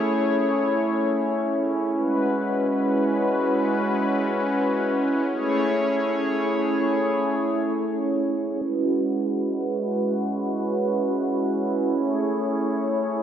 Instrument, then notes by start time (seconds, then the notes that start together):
analog synth pad
Already playing: A3 C#4 E4 G#4 C#5
1.95 G#3 F#4 B4
5.28 A3 E4 G#4 C#5
8.62 G#3 C#4 E4 F#4 B4
11.95 A3 G#4 C#5